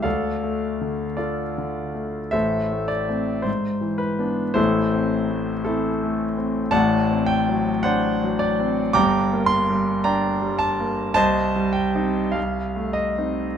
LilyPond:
<<
  \new Staff \with { instrumentName = "Grand piano" } { \time 2/4 \key a \phrygian \tempo 4 = 54 <a' d'' f''>4 <f' a' d''>4 | <a' c'' e''>8 d''8 c''8 b'8 | <e' a' c''>4 <c' e' a'>4 | \key g \minor <d'' fis'' a''>8 g''8 <c'' d'' fis''>8 d''8 |
<g'' bes'' d'''>8 c'''8 <d'' g'' bes''>8 a''8 | <c'' ees'' a''>8 g''8 f''8 ees''8 | }
  \new Staff \with { instrumentName = "Grand piano" } { \time 2/4 \key a \phrygian \tuplet 3/2 { d,8 a8 d8~ d8 d8 a8 } | \tuplet 3/2 { <a,, a,>8 a8 <a c'>8 gis,8 e8 <b d'>8 } | \tuplet 3/2 { <a,, a,>8 c'8 a8 e8 a8 c'8 } | \key g \minor \tuplet 3/2 { <a,, a,>8 c'8 fis8 d'8 fis8 c'8 } |
\tuplet 3/2 { <g,, g,>8 bes8 g8 d'8 g8 bes8 } | \tuplet 3/2 { c,8 g8 <c' ees'>8 c,8 a8 <c' ees'>8 } | }
>>